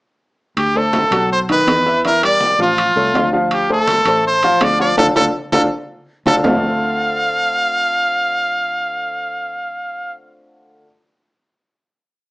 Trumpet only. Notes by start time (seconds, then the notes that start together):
0.58 G4
0.77 A4
1.32 C5
1.52 B4
2.07 A#4
2.25 D5
2.62 F4
3.53 G4
3.73 A4
4.27 C5
4.64 D5
4.81 D5
4.99 A4
5.16 A4
5.53 A4
6.27 A4
6.45 F5